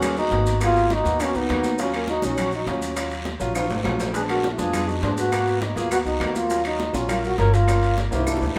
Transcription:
Already playing: D#2 C#4 F#4
0.02 A#3 B3 G#4, high bongo, high conga, low conga, high timbale, long guiro, claves, maracas
0.17 D#4 F#4, high conga, maracas
0.31 G#1 A#3 B3 F#4, high bongo, low bongo, high conga, high timbale, short guiro, maracas
0.46 high bongo, high timbale, short guiro, maracas
0.61 A#3 B3 F4 F#4 G#4, high bongo, high conga, high timbale, long guiro, claves, maracas
0.75 high bongo, high conga, high timbale, maracas
0.90 D#4 F#4, high bongo, high conga, high timbale, short guiro, maracas
1.04 D#2 A#3 B3 F#4, high conga, short guiro, maracas
1.19 A#3 B3 C#4 F#4, high bongo, high conga, high timbale, long guiro, claves, maracas
1.35 C#2 B3 D#4, high bongo, high conga, maracas
1.49 D#2 A#3 B3 F#4, high bongo, low bongo, high conga, high timbale, low timbale, short guiro, claves, maracas
1.64 high bongo, high conga, short guiro, maracas
1.78 F#3 C#4 F4 F#4, high bongo, high timbale, long guiro, maracas
1.93 A#3 C#4, high bongo, high conga, high timbale, claves, maracas
2.08 D#4 F#4, high bongo, high conga, short guiro, maracas
2.22 A#1 F#3 C#4 D#4 F#4, high bongo, high conga, short guiro, maracas
2.37 F#3 C#4 F#4, high bongo, high conga, low conga, high timbale, long guiro, claves, maracas
2.52 D#4 F#4, high conga, maracas
2.66 D#2 F#3 C#4 F4 F#4, high bongo, low bongo, high conga, high timbale, short guiro, maracas
2.81 high bongo, high conga, high timbale, short guiro, maracas
2.95 F#3 C#4 F4, high bongo, high conga, high timbale, long guiro, claves, maracas
3.11 high bongo, high conga, high timbale, maracas
3.25 high bongo, high conga, high timbale, short guiro, maracas
3.40 A#1 F#3 C#4 F4, high conga, short guiro, maracas
3.54 F#3 C#4 F4, high bongo, high conga, high timbale, long guiro, claves, maracas
3.69 G#1, high bongo, high conga, low timbale, maracas
3.84 A#1 F#3 C#4 F4, high bongo, low bongo, high conga, low timbale, short guiro, claves, maracas
3.99 high bongo, high conga, low timbale, short guiro, maracas
4.13 G#3 B3 D4 G#4 B4, high bongo, high conga, high timbale, long guiro, maracas
4.29 F#4 A#4, high bongo, high conga, high timbale, claves, maracas
4.44 high bongo, high conga, short guiro, maracas
4.53 E4 F#4
4.57 F2 G#3 B3 D4 F4 G#4, high bongo, high conga, short guiro, maracas
4.72 G#3 B3 D4, high bongo, high conga, low conga, high timbale, long guiro, claves, maracas
4.88 D#4 F#4, high conga, maracas
5.02 G#2 G#3 B3 D4 F4, high bongo, low bongo, high conga, high timbale, low timbale, short guiro, maracas
5.17 F#4 B4, high bongo, high timbale, short guiro, maracas
5.32 A#3 B3 F#4, high bongo, high conga, high timbale, long guiro, claves, maracas
5.47 high bongo, high conga, high timbale, maracas
5.62 D#4 F#4, high bongo, high conga, high timbale, short guiro, maracas
5.76 D#2 A#3 B3 F4 F#4 G#4, high conga, short guiro, maracas
5.91 A#3 B3 F#4 B4, high bongo, high conga, high timbale, long guiro, claves, maracas
6.06 C#2 D#4 F#4, high bongo, high conga, maracas
6.20 D#2 A#3 B3 F#4, high bongo, low bongo, high conga, high timbale, low timbale, short guiro, claves, maracas
6.35 F4 A#4, high bongo, high conga, short guiro, maracas
6.49 F#3 C#4 F4, high bongo, high timbale, long guiro, maracas
6.65 D#4 F#4, high bongo, high conga, high timbale, claves, maracas
6.79 high bongo, high conga, short guiro, maracas
6.93 A#1 F#3 C#4 F4, high bongo, high conga, short guiro, maracas
7.08 F#3 C#4 F4 A#4, high bongo, high conga, low conga, high timbale, long guiro, claves, maracas
7.23 F#4 A#4, high conga, maracas
7.37 G1 F#3 C#4 F4 A#4 C#5, high bongo, low bongo, high conga, high timbale, short guiro, maracas
7.53 F4 A#4, high bongo, high conga, high timbale, short guiro, maracas
7.67 A#3 C#4 F4, high bongo, high conga, high timbale, long guiro, claves, maracas
7.83 high bongo, high conga, high timbale, maracas
7.98 high bongo, high conga, high timbale, short guiro, maracas
8.11 C2 A#3 C#4 E4 F4 G4, high conga, high timbale, short guiro, maracas
8.26 A#3 D4 E4, high bongo, high conga, high timbale, long guiro, claves, maracas
8.37 high bongo
8.41 D2, high conga, low timbale, maracas
8.46 low bongo
8.55 A#3

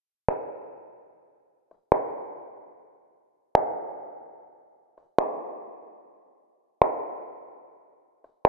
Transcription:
0.29 finger snap
1.71 open hi-hat
1.92 finger snap
3.55 finger snap
4.98 open hi-hat
5.18 finger snap
6.82 finger snap
8.24 open hi-hat
8.45 finger snap

